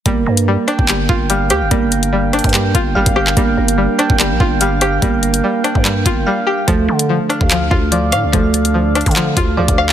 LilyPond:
<<
  \new Staff \with { instrumentName = "Synth keys" } { \time 4/4 \key g \minor \tempo 4 = 145 bes8 bes4 g''4. f''8 g''8 | bes8 bes4 g''4. f''8 g''8 | bes8 bes4 g''4. f''8 g''8 | bes8 bes4 g''4. f''8 g''8 |
a8 a4 f''4. d''8 f''8 | a8 a4 f''4. d''8 f''8 | }
  \new Staff \with { instrumentName = "Ambient pad" } { \time 4/4 \key g \minor << { <d' f''>1~ | <d' f''>1~ | <d' f''>1~ | <d' f''>1~ |
<d' f''>1~ | <d' f''>1 | } \\ { <g bes'>1~ | <g bes'>1~ | <g bes'>1~ | <g bes'>1 |
<d a'>1~ | <d a'>1 | } >> }
  \new Staff \with { instrumentName = "Synth pluck" } { \clef bass \time 4/4 \key g \minor g4 g8 d'8 g8 f'8 g8 g'8 | g4 g8 d'8 g8 f'8 g8 g'8 | g4 g8 d'8 g8 f'8 g8 g'8 | g4 g8 d'8 g8 f'8 g8 g'8 |
f4 f8 d'8 f8 f'8 f8 f''8 | f4 f8 d'8 f8 f'8 f8 f''8 | }
  \new Staff \with { instrumentName = "808-style bass" } { \clef bass \time 4/4 \key g \minor g,,8 g,8. r8 g,,8. g,,4 d,16 g,,16 | g,,4.~ g,,16 g,8. g,,8 g,,16 g,,8. | g,,8 g,,8. r8 g,,8 bes,,16 g,,4. | g,,4 r8. g,8. g,,8 r4 |
d,8 d8. r8 d,8. d,4 a,16 d,16 | d,4.~ d,16 d8. d,8 d,16 d,8. | }
  \new DrumStaff \with { instrumentName = "Drums" } \drummode { \time 4/4 <hh bd>8. hh16 r8 <hh ss>16 bd16 <hc hh>8 bd8 hh8 <hh ss>8 | <hh bd>8 hh16 hh16 r8 <hh ss>32 hh32 <hh bd>32 hh32 <hc hh>8 <hh bd>8 r16 <hh bd>16 ss16 hc16 | <hh bd>8. hh16 r8 <hh ss>16 bd16 <hc hh>8 bd8 hh8 <hh ss>8 | <hh bd>8 hh16 hh16 r8 <hh ss>16 bd16 <hc hh>8 <hh bd>8 r4 |
<hh bd>8. hh16 r8 <hh ss>16 bd16 <hc hh>8 bd8 hh8 <hh ss>8 | <hh bd>8 hh16 hh16 r8 <hh ss>32 hh32 <hh bd>32 hh32 <hc hh>8 <hh bd>8 r16 <hh bd>16 ss16 hc16 | }
>>